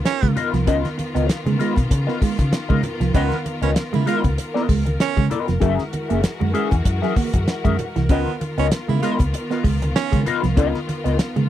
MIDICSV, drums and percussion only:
0, 0, Header, 1, 2, 480
1, 0, Start_track
1, 0, Tempo, 618557
1, 524, Time_signature, 4, 2, 24, 8
1, 8917, End_track
2, 0, Start_track
2, 0, Title_t, "Drums"
2, 42, Note_on_c, 9, 38, 127
2, 42, Note_on_c, 9, 42, 83
2, 120, Note_off_c, 9, 38, 0
2, 120, Note_off_c, 9, 42, 0
2, 177, Note_on_c, 9, 36, 103
2, 177, Note_on_c, 9, 42, 40
2, 184, Note_on_c, 9, 63, 82
2, 255, Note_off_c, 9, 36, 0
2, 255, Note_off_c, 9, 42, 0
2, 262, Note_off_c, 9, 63, 0
2, 284, Note_on_c, 9, 42, 81
2, 285, Note_on_c, 9, 64, 85
2, 362, Note_off_c, 9, 42, 0
2, 363, Note_off_c, 9, 64, 0
2, 417, Note_on_c, 9, 42, 47
2, 424, Note_on_c, 9, 38, 33
2, 495, Note_off_c, 9, 42, 0
2, 501, Note_off_c, 9, 38, 0
2, 522, Note_on_c, 9, 42, 87
2, 523, Note_on_c, 9, 36, 108
2, 600, Note_off_c, 9, 36, 0
2, 600, Note_off_c, 9, 42, 0
2, 657, Note_on_c, 9, 38, 41
2, 658, Note_on_c, 9, 42, 35
2, 662, Note_on_c, 9, 63, 81
2, 735, Note_off_c, 9, 38, 0
2, 736, Note_off_c, 9, 42, 0
2, 739, Note_off_c, 9, 63, 0
2, 766, Note_on_c, 9, 42, 81
2, 771, Note_on_c, 9, 63, 90
2, 844, Note_off_c, 9, 42, 0
2, 848, Note_off_c, 9, 63, 0
2, 900, Note_on_c, 9, 42, 51
2, 977, Note_off_c, 9, 42, 0
2, 1003, Note_on_c, 9, 42, 104
2, 1005, Note_on_c, 9, 38, 120
2, 1081, Note_off_c, 9, 42, 0
2, 1082, Note_off_c, 9, 38, 0
2, 1137, Note_on_c, 9, 63, 93
2, 1139, Note_on_c, 9, 42, 40
2, 1214, Note_off_c, 9, 63, 0
2, 1216, Note_off_c, 9, 42, 0
2, 1241, Note_on_c, 9, 62, 39
2, 1246, Note_on_c, 9, 42, 87
2, 1318, Note_off_c, 9, 62, 0
2, 1323, Note_off_c, 9, 42, 0
2, 1368, Note_on_c, 9, 64, 81
2, 1377, Note_on_c, 9, 36, 99
2, 1379, Note_on_c, 9, 42, 51
2, 1446, Note_off_c, 9, 64, 0
2, 1454, Note_off_c, 9, 36, 0
2, 1457, Note_off_c, 9, 42, 0
2, 1482, Note_on_c, 9, 36, 118
2, 1483, Note_on_c, 9, 42, 102
2, 1485, Note_on_c, 9, 62, 29
2, 1559, Note_off_c, 9, 36, 0
2, 1561, Note_off_c, 9, 42, 0
2, 1563, Note_off_c, 9, 62, 0
2, 1617, Note_on_c, 9, 38, 36
2, 1694, Note_off_c, 9, 38, 0
2, 1720, Note_on_c, 9, 36, 97
2, 1721, Note_on_c, 9, 46, 69
2, 1724, Note_on_c, 9, 63, 61
2, 1798, Note_off_c, 9, 36, 0
2, 1799, Note_off_c, 9, 46, 0
2, 1801, Note_off_c, 9, 63, 0
2, 1852, Note_on_c, 9, 42, 59
2, 1853, Note_on_c, 9, 63, 90
2, 1854, Note_on_c, 9, 36, 98
2, 1930, Note_off_c, 9, 42, 0
2, 1931, Note_off_c, 9, 63, 0
2, 1932, Note_off_c, 9, 36, 0
2, 1959, Note_on_c, 9, 62, 43
2, 1960, Note_on_c, 9, 38, 123
2, 1960, Note_on_c, 9, 42, 83
2, 2036, Note_off_c, 9, 62, 0
2, 2038, Note_off_c, 9, 38, 0
2, 2038, Note_off_c, 9, 42, 0
2, 2094, Note_on_c, 9, 36, 108
2, 2100, Note_on_c, 9, 63, 79
2, 2172, Note_off_c, 9, 36, 0
2, 2177, Note_off_c, 9, 63, 0
2, 2197, Note_on_c, 9, 64, 82
2, 2201, Note_on_c, 9, 42, 91
2, 2275, Note_off_c, 9, 64, 0
2, 2278, Note_off_c, 9, 42, 0
2, 2335, Note_on_c, 9, 42, 51
2, 2341, Note_on_c, 9, 38, 34
2, 2412, Note_off_c, 9, 42, 0
2, 2419, Note_off_c, 9, 38, 0
2, 2440, Note_on_c, 9, 36, 111
2, 2440, Note_on_c, 9, 42, 86
2, 2517, Note_off_c, 9, 36, 0
2, 2517, Note_off_c, 9, 42, 0
2, 2574, Note_on_c, 9, 38, 44
2, 2576, Note_on_c, 9, 63, 76
2, 2651, Note_off_c, 9, 38, 0
2, 2654, Note_off_c, 9, 63, 0
2, 2684, Note_on_c, 9, 42, 87
2, 2685, Note_on_c, 9, 62, 41
2, 2685, Note_on_c, 9, 63, 85
2, 2761, Note_off_c, 9, 42, 0
2, 2762, Note_off_c, 9, 62, 0
2, 2762, Note_off_c, 9, 63, 0
2, 2812, Note_on_c, 9, 42, 57
2, 2890, Note_off_c, 9, 42, 0
2, 2917, Note_on_c, 9, 42, 104
2, 2918, Note_on_c, 9, 38, 124
2, 2926, Note_on_c, 9, 62, 38
2, 2994, Note_off_c, 9, 42, 0
2, 2996, Note_off_c, 9, 38, 0
2, 3003, Note_off_c, 9, 62, 0
2, 3053, Note_on_c, 9, 42, 34
2, 3057, Note_on_c, 9, 63, 95
2, 3131, Note_off_c, 9, 42, 0
2, 3134, Note_off_c, 9, 63, 0
2, 3160, Note_on_c, 9, 42, 89
2, 3162, Note_on_c, 9, 38, 43
2, 3237, Note_off_c, 9, 42, 0
2, 3240, Note_off_c, 9, 38, 0
2, 3290, Note_on_c, 9, 64, 85
2, 3293, Note_on_c, 9, 36, 99
2, 3293, Note_on_c, 9, 42, 52
2, 3368, Note_off_c, 9, 64, 0
2, 3371, Note_off_c, 9, 36, 0
2, 3371, Note_off_c, 9, 42, 0
2, 3401, Note_on_c, 9, 42, 104
2, 3410, Note_on_c, 9, 62, 31
2, 3478, Note_off_c, 9, 42, 0
2, 3487, Note_off_c, 9, 62, 0
2, 3537, Note_on_c, 9, 38, 37
2, 3614, Note_off_c, 9, 38, 0
2, 3639, Note_on_c, 9, 36, 92
2, 3640, Note_on_c, 9, 46, 78
2, 3644, Note_on_c, 9, 62, 39
2, 3644, Note_on_c, 9, 63, 59
2, 3716, Note_off_c, 9, 36, 0
2, 3717, Note_off_c, 9, 46, 0
2, 3722, Note_off_c, 9, 62, 0
2, 3722, Note_off_c, 9, 63, 0
2, 3774, Note_on_c, 9, 42, 61
2, 3779, Note_on_c, 9, 63, 95
2, 3852, Note_off_c, 9, 42, 0
2, 3856, Note_off_c, 9, 63, 0
2, 3881, Note_on_c, 9, 38, 122
2, 3881, Note_on_c, 9, 42, 96
2, 3887, Note_on_c, 9, 62, 42
2, 3959, Note_off_c, 9, 38, 0
2, 3959, Note_off_c, 9, 42, 0
2, 3965, Note_off_c, 9, 62, 0
2, 4014, Note_on_c, 9, 36, 98
2, 4025, Note_on_c, 9, 63, 78
2, 4092, Note_off_c, 9, 36, 0
2, 4102, Note_off_c, 9, 63, 0
2, 4120, Note_on_c, 9, 42, 84
2, 4124, Note_on_c, 9, 62, 34
2, 4124, Note_on_c, 9, 64, 80
2, 4198, Note_off_c, 9, 42, 0
2, 4201, Note_off_c, 9, 62, 0
2, 4201, Note_off_c, 9, 64, 0
2, 4253, Note_on_c, 9, 42, 45
2, 4260, Note_on_c, 9, 38, 36
2, 4331, Note_off_c, 9, 42, 0
2, 4337, Note_off_c, 9, 38, 0
2, 4355, Note_on_c, 9, 62, 25
2, 4357, Note_on_c, 9, 42, 84
2, 4358, Note_on_c, 9, 36, 111
2, 4432, Note_off_c, 9, 62, 0
2, 4435, Note_off_c, 9, 42, 0
2, 4436, Note_off_c, 9, 36, 0
2, 4494, Note_on_c, 9, 38, 46
2, 4495, Note_on_c, 9, 42, 36
2, 4500, Note_on_c, 9, 63, 71
2, 4571, Note_off_c, 9, 38, 0
2, 4573, Note_off_c, 9, 42, 0
2, 4577, Note_off_c, 9, 63, 0
2, 4601, Note_on_c, 9, 42, 81
2, 4608, Note_on_c, 9, 62, 42
2, 4608, Note_on_c, 9, 63, 79
2, 4679, Note_off_c, 9, 42, 0
2, 4686, Note_off_c, 9, 62, 0
2, 4686, Note_off_c, 9, 63, 0
2, 4735, Note_on_c, 9, 42, 52
2, 4813, Note_off_c, 9, 42, 0
2, 4838, Note_on_c, 9, 42, 112
2, 4840, Note_on_c, 9, 38, 124
2, 4916, Note_off_c, 9, 42, 0
2, 4918, Note_off_c, 9, 38, 0
2, 4976, Note_on_c, 9, 63, 85
2, 5054, Note_off_c, 9, 63, 0
2, 5080, Note_on_c, 9, 42, 82
2, 5157, Note_off_c, 9, 42, 0
2, 5209, Note_on_c, 9, 64, 90
2, 5214, Note_on_c, 9, 36, 96
2, 5214, Note_on_c, 9, 42, 48
2, 5287, Note_off_c, 9, 64, 0
2, 5292, Note_off_c, 9, 36, 0
2, 5292, Note_off_c, 9, 42, 0
2, 5318, Note_on_c, 9, 42, 94
2, 5319, Note_on_c, 9, 36, 104
2, 5331, Note_on_c, 9, 62, 30
2, 5395, Note_off_c, 9, 42, 0
2, 5397, Note_off_c, 9, 36, 0
2, 5408, Note_off_c, 9, 62, 0
2, 5454, Note_on_c, 9, 38, 33
2, 5531, Note_off_c, 9, 38, 0
2, 5559, Note_on_c, 9, 36, 97
2, 5559, Note_on_c, 9, 46, 78
2, 5569, Note_on_c, 9, 62, 40
2, 5569, Note_on_c, 9, 63, 63
2, 5636, Note_off_c, 9, 46, 0
2, 5637, Note_off_c, 9, 36, 0
2, 5646, Note_off_c, 9, 62, 0
2, 5646, Note_off_c, 9, 63, 0
2, 5691, Note_on_c, 9, 42, 64
2, 5694, Note_on_c, 9, 36, 100
2, 5701, Note_on_c, 9, 63, 90
2, 5769, Note_off_c, 9, 42, 0
2, 5771, Note_off_c, 9, 36, 0
2, 5779, Note_off_c, 9, 63, 0
2, 5801, Note_on_c, 9, 42, 91
2, 5802, Note_on_c, 9, 38, 127
2, 5809, Note_on_c, 9, 62, 43
2, 5879, Note_off_c, 9, 38, 0
2, 5879, Note_off_c, 9, 42, 0
2, 5887, Note_off_c, 9, 62, 0
2, 5935, Note_on_c, 9, 42, 38
2, 5936, Note_on_c, 9, 36, 99
2, 5947, Note_on_c, 9, 63, 89
2, 6013, Note_off_c, 9, 36, 0
2, 6013, Note_off_c, 9, 42, 0
2, 6025, Note_off_c, 9, 63, 0
2, 6043, Note_on_c, 9, 42, 81
2, 6049, Note_on_c, 9, 62, 36
2, 6049, Note_on_c, 9, 64, 85
2, 6121, Note_off_c, 9, 42, 0
2, 6127, Note_off_c, 9, 62, 0
2, 6127, Note_off_c, 9, 64, 0
2, 6177, Note_on_c, 9, 42, 44
2, 6184, Note_on_c, 9, 38, 34
2, 6255, Note_off_c, 9, 42, 0
2, 6261, Note_off_c, 9, 38, 0
2, 6279, Note_on_c, 9, 42, 86
2, 6281, Note_on_c, 9, 36, 119
2, 6357, Note_off_c, 9, 42, 0
2, 6359, Note_off_c, 9, 36, 0
2, 6421, Note_on_c, 9, 63, 67
2, 6499, Note_off_c, 9, 63, 0
2, 6527, Note_on_c, 9, 42, 77
2, 6528, Note_on_c, 9, 63, 91
2, 6605, Note_off_c, 9, 42, 0
2, 6606, Note_off_c, 9, 63, 0
2, 6658, Note_on_c, 9, 42, 53
2, 6736, Note_off_c, 9, 42, 0
2, 6762, Note_on_c, 9, 42, 111
2, 6764, Note_on_c, 9, 38, 107
2, 6840, Note_off_c, 9, 42, 0
2, 6842, Note_off_c, 9, 38, 0
2, 6900, Note_on_c, 9, 63, 85
2, 6977, Note_off_c, 9, 63, 0
2, 7006, Note_on_c, 9, 42, 78
2, 7006, Note_on_c, 9, 62, 38
2, 7009, Note_on_c, 9, 38, 42
2, 7083, Note_off_c, 9, 42, 0
2, 7083, Note_off_c, 9, 62, 0
2, 7086, Note_off_c, 9, 38, 0
2, 7132, Note_on_c, 9, 64, 83
2, 7139, Note_on_c, 9, 36, 92
2, 7140, Note_on_c, 9, 42, 56
2, 7210, Note_off_c, 9, 64, 0
2, 7216, Note_off_c, 9, 36, 0
2, 7218, Note_off_c, 9, 42, 0
2, 7247, Note_on_c, 9, 42, 102
2, 7253, Note_on_c, 9, 62, 33
2, 7324, Note_off_c, 9, 42, 0
2, 7330, Note_off_c, 9, 62, 0
2, 7380, Note_on_c, 9, 42, 36
2, 7382, Note_on_c, 9, 38, 39
2, 7458, Note_off_c, 9, 42, 0
2, 7459, Note_off_c, 9, 38, 0
2, 7484, Note_on_c, 9, 36, 92
2, 7484, Note_on_c, 9, 46, 73
2, 7488, Note_on_c, 9, 63, 58
2, 7562, Note_off_c, 9, 36, 0
2, 7562, Note_off_c, 9, 46, 0
2, 7566, Note_off_c, 9, 63, 0
2, 7622, Note_on_c, 9, 42, 64
2, 7623, Note_on_c, 9, 63, 103
2, 7699, Note_off_c, 9, 42, 0
2, 7701, Note_off_c, 9, 63, 0
2, 7728, Note_on_c, 9, 38, 125
2, 7728, Note_on_c, 9, 42, 83
2, 7730, Note_on_c, 9, 62, 48
2, 7805, Note_off_c, 9, 42, 0
2, 7806, Note_off_c, 9, 38, 0
2, 7807, Note_off_c, 9, 62, 0
2, 7859, Note_on_c, 9, 36, 113
2, 7860, Note_on_c, 9, 42, 43
2, 7869, Note_on_c, 9, 63, 86
2, 7937, Note_off_c, 9, 36, 0
2, 7937, Note_off_c, 9, 42, 0
2, 7947, Note_off_c, 9, 63, 0
2, 7965, Note_on_c, 9, 42, 89
2, 7969, Note_on_c, 9, 62, 38
2, 7969, Note_on_c, 9, 64, 77
2, 8042, Note_off_c, 9, 42, 0
2, 8047, Note_off_c, 9, 62, 0
2, 8047, Note_off_c, 9, 64, 0
2, 8099, Note_on_c, 9, 42, 50
2, 8106, Note_on_c, 9, 38, 36
2, 8177, Note_off_c, 9, 42, 0
2, 8183, Note_off_c, 9, 38, 0
2, 8200, Note_on_c, 9, 62, 30
2, 8204, Note_on_c, 9, 36, 125
2, 8204, Note_on_c, 9, 42, 84
2, 8277, Note_off_c, 9, 62, 0
2, 8282, Note_off_c, 9, 36, 0
2, 8282, Note_off_c, 9, 42, 0
2, 8338, Note_on_c, 9, 38, 42
2, 8344, Note_on_c, 9, 63, 71
2, 8416, Note_off_c, 9, 38, 0
2, 8422, Note_off_c, 9, 63, 0
2, 8449, Note_on_c, 9, 42, 87
2, 8452, Note_on_c, 9, 62, 39
2, 8452, Note_on_c, 9, 63, 79
2, 8527, Note_off_c, 9, 42, 0
2, 8530, Note_off_c, 9, 62, 0
2, 8530, Note_off_c, 9, 63, 0
2, 8579, Note_on_c, 9, 42, 54
2, 8657, Note_off_c, 9, 42, 0
2, 8683, Note_on_c, 9, 42, 95
2, 8685, Note_on_c, 9, 38, 120
2, 8761, Note_off_c, 9, 42, 0
2, 8762, Note_off_c, 9, 38, 0
2, 8817, Note_on_c, 9, 42, 37
2, 8818, Note_on_c, 9, 63, 89
2, 8895, Note_off_c, 9, 42, 0
2, 8896, Note_off_c, 9, 63, 0
2, 8917, End_track
0, 0, End_of_file